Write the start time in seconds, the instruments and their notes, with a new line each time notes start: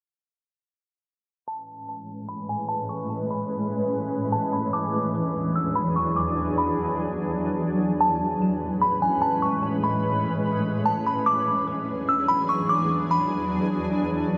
1.47 ambient pad A2 E3 G#3 C#4 B4, synth bell A5
2.29 synth bell B5
2.49 synth bell G#5
2.69 synth bell A5
2.89 synth bell C#6
3.31 synth bell B5
4.32 synth bell A5
4.53 synth bell B5
4.73 ambient pad E2 F#3 D4 G#4, synth bell D6
5.56 synth bell E6
5.75 synth bell B5
5.96 synth bell C#6
6.16 synth bell D6
6.58 synth bell B5
8.00 ambient pad A2 G#3 C#4 B4, synth bell A5
8.81 synth bell B5
9.02 synth bell G#5
9.22 synth bell A5
9.42 synth bell C#6
9.84 synth bell B5
10.86 synth bell A5
11.07 synth bell B5
11.26 ambient pad E2 E3 F#3 D4 G#4, synth bell D6
12.09 synth bell E6
12.28 synth bell B5
12.49 synth bell C#6
12.69 synth bell D6
13.11 synth bell B5